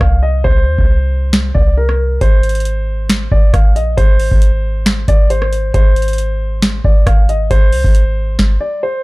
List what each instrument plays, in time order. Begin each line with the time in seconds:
0.00 808-style bass C2, grand piano F5, kick, cross-stick
0.23 grand piano D#5
0.44 808-style bass C2, grand piano C5, kick
0.67 808-style bass D#2
0.79 808-style bass C2, kick
1.33 finger snap, snare
1.55 808-style bass C2, grand piano D5, kick
1.77 grand piano A#4
1.89 cross-stick
2.21 808-style bass G#1, grand piano C5, kick, closed hi-hat
2.43 closed hi-hat
2.49 closed hi-hat
2.55 closed hi-hat
2.60 closed hi-hat
2.65 closed hi-hat
3.10 finger snap, snare, closed hi-hat
3.32 808-style bass G#1, grand piano D5, kick
3.53 808-style bass G#1, grand piano F5, kick, cross-stick, closed hi-hat
3.76 808-style bass A#1, grand piano D#5, closed hi-hat
3.97 808-style bass G#1, grand piano C5, kick, closed hi-hat
4.20 open hi-hat
4.32 808-style bass G#1, kick
4.42 closed hi-hat
4.86 finger snap, snare, closed hi-hat
5.08 808-style bass G#1, grand piano D5, kick, closed hi-hat
5.30 grand piano C5, closed hi-hat
5.42 cross-stick
5.53 closed hi-hat
5.74 808-style bass G#1, grand piano C5, kick, closed hi-hat
5.96 closed hi-hat
6.02 closed hi-hat
6.08 closed hi-hat
6.13 closed hi-hat
6.18 closed hi-hat
6.62 finger snap, snare, closed hi-hat
6.84 808-style bass G#1, grand piano D5, kick
7.06 808-style bass G#1, grand piano F5, kick, cross-stick, closed hi-hat
7.29 grand piano D#5, closed hi-hat
7.51 808-style bass G#1, grand piano C5, kick, closed hi-hat
7.72 808-style bass C2, open hi-hat
7.84 808-style bass G#1, kick
7.95 closed hi-hat
8.39 kick, snare
8.61 grand piano D5
8.83 grand piano C5